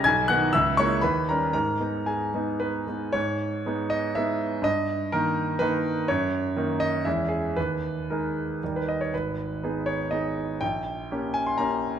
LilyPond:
<<
  \new Staff \with { instrumentName = "Grand piano" } { \time 3/4 \key gis \minor \tempo 4 = 121 << { gis'''8 fis'''8 e'''8 cis'''8 b''8 ais''8 | ais''4 gis''4 b'4 | cis''4. dis''8 e''4 | dis''4 ais'4 b'4 |
cis''4. dis''8 e''8 gis'8 | b'4 ais'4~ ais'16 b'16 dis''16 cis''16 | b'4. cis''8 dis''4 | g''4. gis''16 bis''16 bes''4 | } \\ { gis''8 fis''8 e''8 cis''8 b'8 ais'8 | ais'4 gis'4. r8 | r2. | r2. |
r2. | r2. | r2. | r2. | } >> }
  \new Staff \with { instrumentName = "Grand piano" } { \time 3/4 \key gis \minor b,,8 <dis b dis'>8 cis,8 <gis ais e'>8 dis,8 <g cis' dis'>8 | gis,8 <gis b dis'>4 <gis b dis'>4 <gis b dis'>8 | gis,4 <gis b dis'>4 <gis b dis'>4 | g,4 <dis ais dis'>4 <dis ais dis'>4 |
fis,4 <dis ais dis'>4 <e, gis cis' e'>4 | dis,4 <gis dis' gis'>4 <dis, g dis' ais'>4 | gis,,4 <b dis' gis'>4 <b dis' gis'>4 | bes,,4 <bes des' g'>4 <bes des' g'>4 | }
>>